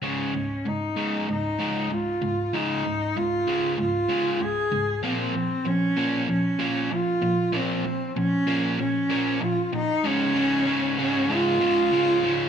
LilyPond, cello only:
\new Staff \with { instrumentName = "Cello" } { \time 4/4 \key des \major \tempo 4 = 96 des'4 ees'4 ees'4 f'4 | ees'4 f'4 f'4 aes'4 | c'4 des'4 des'4 f'4 | c'4 des'4 des'4 f'8 ees'8 |
des'4. des'8 f'2 | }